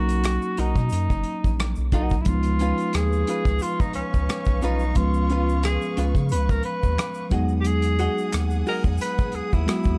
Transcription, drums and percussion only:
0.09 closed hi-hat, shaker
0.24 finger snap, cross-stick, closed hi-hat, shaker
0.42 shaker
0.57 closed hi-hat, shaker
0.76 kick, cross-stick, shaker
0.89 closed hi-hat, shaker
1.10 kick, shaker
1.23 closed hi-hat
1.44 kick, shaker
1.60 finger snap, cross-stick, closed hi-hat, shaker
1.75 shaker
1.92 kick, closed hi-hat, shaker
2.10 kick, shaker
2.25 kick, closed hi-hat, shaker
2.43 closed hi-hat, shaker
2.59 closed hi-hat, shaker
2.78 closed hi-hat, shaker
2.93 finger snap, cross-stick, closed hi-hat, shaker
3.12 shaker
3.27 closed hi-hat, shaker
3.45 kick, cross-stick, shaker
3.59 closed hi-hat, shaker
3.80 kick, shaker
3.93 closed hi-hat
4.14 kick, shaker
4.29 finger snap, cross-stick, closed hi-hat, shaker
4.45 kick, shaker
4.62 closed hi-hat, shaker
4.79 shaker
4.95 kick, closed hi-hat, shaker
5.14 shaker
5.30 closed hi-hat, shaker
5.49 shaker
5.63 finger snap, cross-stick, closed hi-hat, shaker
5.82 shaker
5.97 closed hi-hat, shaker
6.15 kick, shaker
6.29 closed hi-hat, shaker
6.49 kick, shaker
6.63 closed hi-hat
6.83 kick, shaker
6.98 finger snap, cross-stick, closed hi-hat, shaker
7.14 shaker
7.31 kick, closed hi-hat, shaker
7.48 shaker
7.64 closed hi-hat, shaker
7.82 closed hi-hat, shaker
7.99 closed hi-hat, shaker
8.18 shaker
8.32 finger snap, cross-stick, closed hi-hat, shaker
8.50 shaker
8.67 open hi-hat, shaker
8.84 kick, shaker
8.98 closed hi-hat, shaker
9.18 kick, shaker
9.32 closed hi-hat
9.52 kick, shaker
9.68 finger snap, cross-stick, closed hi-hat, shaker
9.84 kick, shaker

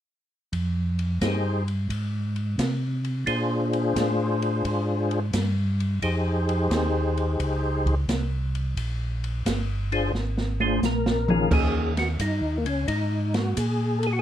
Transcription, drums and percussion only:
0.53 kick, ride
0.99 ride
1.21 kick, snare, hi-hat pedal, ride
1.68 ride
1.90 kick, ride
2.36 ride
2.58 kick, snare, hi-hat pedal, ride
3.05 ride
3.27 kick, ride
3.73 ride
3.96 kick, snare, hi-hat pedal, ride
4.42 ride
4.65 kick, ride
5.11 ride
5.33 kick, snare, hi-hat pedal, ride
5.80 ride
6.02 kick, ride
6.49 ride
6.71 kick, snare, hi-hat pedal, ride
7.17 ride
7.40 kick, ride
7.86 kick, ride
8.08 kick, snare, hi-hat pedal, ride
8.55 ride
8.77 kick, ride
9.24 ride
9.46 kick, snare, hi-hat pedal, ride
9.92 ride
10.15 snare
10.38 snare
10.60 high tom
10.83 snare, hi-hat pedal
11.06 snare
11.28 mid tom
11.51 kick, crash
11.97 snare, ride
12.20 kick, hi-hat pedal, ride
12.66 ride
12.88 kick, ride
13.34 snare, ride
13.57 kick, hi-hat pedal, ride
14.03 ride

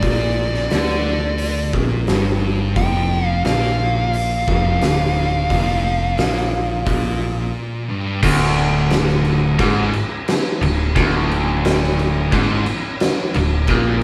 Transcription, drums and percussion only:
0.02 kick, open hi-hat
0.54 snare
0.70 snare, open hi-hat
0.89 snare
1.38 open hi-hat
1.73 kick
2.07 snare, open hi-hat
2.76 kick, open hi-hat
3.45 snare, open hi-hat
3.63 snare
4.13 open hi-hat
4.48 kick
4.82 snare, open hi-hat
5.50 kick, open hi-hat
6.18 snare, open hi-hat
6.37 snare
6.86 kick, open hi-hat
8.23 kick, crash
8.56 crash
8.90 snare, crash
9.09 snare
9.25 crash
9.59 kick, crash
9.93 crash
10.28 snare, crash
10.62 crash
10.96 kick, crash
11.31 crash
11.65 snare, crash
11.83 snare
11.99 crash
12.32 kick, crash
12.66 crash
13.00 snare, crash
13.34 crash
13.67 kick, crash

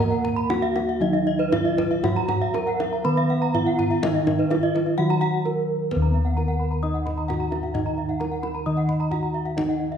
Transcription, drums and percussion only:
0.12 kendang slap
0.25 kendang slap, kendang low
0.50 kendang high
0.76 kendang slap, kendang high
1.02 kendang slap
1.14 kendang slap
1.53 kendang slap, kendang high, kendang low
1.78 kendang high, kendang low
1.91 kendang slap
2.04 kendang high, kendang low
2.16 kendang slap
2.28 kendang slap, kendang high, kendang low
2.54 kendang high
2.80 kendang slap, kendang high
3.05 kendang slap
3.18 kendang slap
3.54 kendang slap, kendang low
3.79 kendang low
3.92 kendang slap
4.03 kendang high, kendang low
4.15 kendang slap
4.27 kendang slap, kendang high, kendang low
4.39 kendang slap
4.51 kendang high
4.76 kendang slap, kendang high
4.98 kendang slap
5.10 kendang slap
5.22 kendang slap
5.91 kendang low
6.04 kendang slap
6.72 kendang slap
6.95 kendang slap
7.07 kendang high, kendang low
7.18 kendang slap
7.30 kendang high, kendang low
7.52 kendang high
7.63 kendang slap
7.75 kendang low
7.87 kendang slap
8.09 kendang slap
8.21 kendang high
8.43 kendang high
8.55 kendang slap
8.77 kendang slap
8.89 kendang low
9.01 kendang slap
9.12 kendang low
9.46 kendang slap
9.58 kendang low
9.70 kendang slap
9.92 kendang slap

